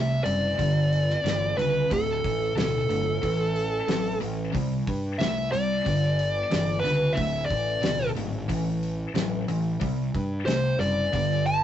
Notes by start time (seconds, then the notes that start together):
Already playing: C2 C3 A3 E5
0.24 F#1 C3 G3 D5, open hi-hat
0.58 G1 G2 D3, kick, open hi-hat
0.93 open hi-hat
1.10 snare
1.23 G1 G2 E3, snare, open hi-hat
1.57 C#2 G2 D3 B4, open hi-hat
1.90 D1 D2 A2 A4, kick, open hi-hat
2.24 A1, kick, open hi-hat
2.55 D1 D2 B2 A4, snare, open hi-hat
2.88 G1 D2 A2, open hi-hat
3.22 A1 A2 E3, kick, open hi-hat
3.56 open hi-hat
3.88 A1 A2 F#3, snare, open hi-hat
4.20 A1 A2 E3, open hi-hat
4.53 C2 C3 G3, kick, open hi-hat
4.87 G2, kick, open hi-hat
5.19 C2 C3 A3 E5, snare, open hi-hat
5.52 C2 C3 G3 D5, open hi-hat
5.85 G1 G2 D3, kick, open hi-hat
6.19 open hi-hat
6.51 G1 G2 E3, snare, open hi-hat
6.80 B4
6.84 C#2 G2 D3, open hi-hat
7.13 D2 A2 E5
7.17 D1, kick, open hi-hat
7.46 D5
7.50 A1, kick, open hi-hat
7.83 D1 D2 B2, snare, open hi-hat
8.16 G#1 D2 A2, open hi-hat
8.49 A1 A2 E3, kick, open hi-hat
8.83 open hi-hat
9.14 A1 A2 F#3, snare, open hi-hat
9.47 A1 A2 E3, open hi-hat
9.80 C2 C3 G3, kick, open hi-hat
10.15 G2, kick, open hi-hat
10.46 C2 C3 A3 C5, snare, open hi-hat
10.78 F#1 C3 G3 D5, open hi-hat
11.12 G1 G2 D3, kick, open hi-hat
11.46 A5, open hi-hat